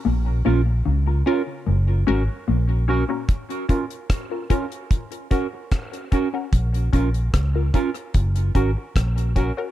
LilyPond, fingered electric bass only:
\new Staff \with { instrumentName = "Fingered electric bass" } { \clef bass \time 4/4 \key bes \minor \tempo 4 = 74 bes,,8 bes,,8 des,8 r8 ges,,8 aes,,16 r16 bes,,8. r16 | r1 | bes,,8 bes,,8 des,8 r8 ges,,8 aes,,16 r16 bes,,8. r16 | }